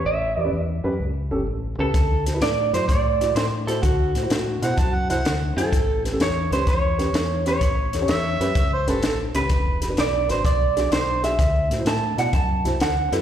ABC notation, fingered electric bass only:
X:1
M:4/4
L:1/8
Q:"Swing" 1/4=127
K:Amix
V:1 name="Fingered electric bass" clef=bass
A,,, E,, E,, F,, C,, G,,, A,,, C,, | D,,2 A,, F,, A,,2 A,,2 | D,, A,, A,, B,, F,, =C,, D,, F,, | A,,,2 E,, C,, E,,2 E,,2 |
A,,, E,, E,, F,, C,, G,,, A,,, C,, | E,,,2 B,,, ^G,,, B,,,2 B,,,2 | D,, A,, A,, B,, F,, =C,, D,, F,, |]